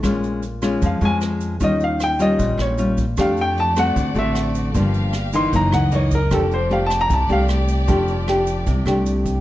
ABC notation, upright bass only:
X:1
M:4/4
L:1/8
Q:1/4=153
K:F
V:1 name="Upright bass" clef=bass
B,,,4 F,, F,,3 | _E,,4 B,,, B,,,3 | F,,4 D,, A,,,3 | G,,,4 _G,,, _D,,3 |
F,,,4 C,, C,,3 | F,,,4 C,, C,,3 |]